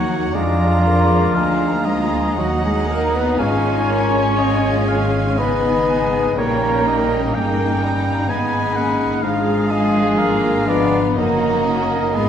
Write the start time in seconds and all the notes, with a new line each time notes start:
Already playing: D#2 D#3 F#3 A#3 D#4 F#4 A#4 C#5 F#5
0.01 D#4
0.34 F2 F3 G#3 D4 F4 D5 A#5
0.68 G#4
0.84 G#3 A#3
1.03 D4
1.34 D2 G#3 A#3 D4 D#4 F5 A#5
1.70 D4
1.85 F3 G#3 F4 G#4 D#5
2.04 G#3
2.36 D#2 D#3 F#3 A#3 D#4 F#4 F#5
2.63 G#3 G#4
2.73 D#4
2.87 A#3 A#4
3.06 D#4 A#4
3.14 B3 B4
3.37 G#1 G#2 G#3 C#4 F4 C#5 F5 G#5
3.88 G#3 A#3
4.05 G#3
4.37 G#3 A#3 F4 D#5 G#5
4.73 G#3
4.88 F5
5.06 D#3
5.37 C#3 G#3 B3 D#4 B4 D#5 B5
5.72 D#3
5.87 G#5
6.05 G#3
6.35 A#1 A#2 G3 A#3 C#4 D#4 A#4 C#5 G5 A#5
6.84 G3 D#4 D#5
7.02 G3
7.32 G1 G#3 A#3 C#4 D#4 G5
7.65 G3
7.82 G3 A#5
7.96 A#3
8.28 G#1 G#2 G#3 B3 G#5 B5
8.60 G#3
8.74 A#3 C#4 F#5
8.91 D#4 B4
9.22 G#1 G#2 F3 G#3 D4 F4 G#4 F5 A#5
9.55 A#4
9.70 G#3 D#5 G#5
9.86 F3
10.18 F#3 A#3 F5 A#5
10.51 F3
10.66 G#3 B3 D4 B4 D5
10.84 D3
11.16 F#1 F#2 F#3 A#3 D#4 F#4 A#4 D#5 A#5
11.50 F#3
11.65 F#3 C#4
11.83 D#4 A#4
12.13 G#1 G#2 G#3 B3 F4 G#4 G#5 B5